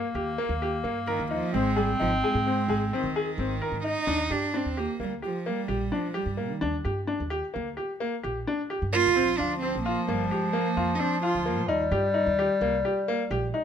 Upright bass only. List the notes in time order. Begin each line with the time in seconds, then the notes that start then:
0.15 D#2
0.49 D#2
0.84 G2
1.19 D#2
1.54 G#1
2.01 G#1
2.35 G#2
2.68 G#1
3.04 D#2
3.38 G#1
3.72 G#2
4.07 D#2
4.30 G2
4.66 D#2
5.00 D2
5.69 A#1
6.26 G2
6.50 D#3
6.62 D#2
6.85 G2
7.20 D#2
7.56 D2
8.24 A#1
8.82 G2
9.06 F2
9.16 A#1
9.40 D2
9.75 A#1
10.09 G1
10.77 F2
11.35 D2
11.58 A#2
11.69 D#2
11.91 G2
12.27 D#2
12.61 C2
13.31 A#1